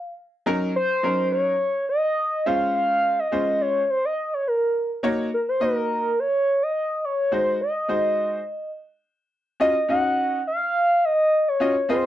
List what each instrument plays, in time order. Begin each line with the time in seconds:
Already playing: analog synth lead F5
0.46 grand piano F#3 C#4 D#4 A#4
0.76 analog synth lead C5
1.03 grand piano F#3 C#4 D#4 A#4
1.32 analog synth lead C#5
1.89 analog synth lead D#5
2.46 grand piano G#3 C#4 F4 C5, analog synth lead F5
2.75 analog synth lead F5
3.19 analog synth lead D#5
3.32 grand piano G#3 C#4 F4 C5
3.61 analog synth lead C#5
3.90 analog synth lead C5
4.05 analog synth lead D#5
4.34 analog synth lead C#5
4.47 analog synth lead A#4
5.03 grand piano A#3 D#4 F#4 C#5
5.34 analog synth lead A#4
5.49 analog synth lead C5
5.60 grand piano A#3 D#4 F#4 D#5, analog synth lead A#4
6.19 analog synth lead C#5
6.63 analog synth lead D#5
7.05 analog synth lead C#5
7.32 grand piano G#3 D#4 F#4 C5, analog synth lead C5
7.61 analog synth lead D#5
7.88 grand piano G#3 D#4 F#4 C5
9.60 grand piano C#4 F4 F#4 D#5, analog synth lead D#5
9.88 grand piano C#4 D#4 F#4 D#5, analog synth lead F#5
10.47 analog synth lead F5
11.05 analog synth lead D#5
11.48 analog synth lead C#5
11.60 grand piano C#4 F4 F#4 D#5
11.89 grand piano C4 F4 G#4 D#5, analog synth lead C5